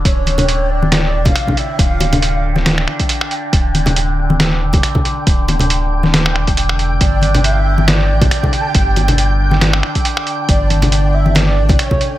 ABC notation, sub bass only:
X:1
M:4/4
L:1/16
Q:"Swing 16ths" 1/4=138
K:Dm
V:1 name="Sub bass" clef=bass
D,,,8- D,,,2 E,,,2 z4 | D,,,8- D,,,2 z6 | D,,,8- D,,,2 E,,,2 z4 | D,,,8- D,,,2 E,,,4- E,,, F,,, |
G,,,8- G,,,2 A,,,2 z4 | G,,,8- G,,,2 z6 | G,,,8- G,,,2 A,,,2 z4 |]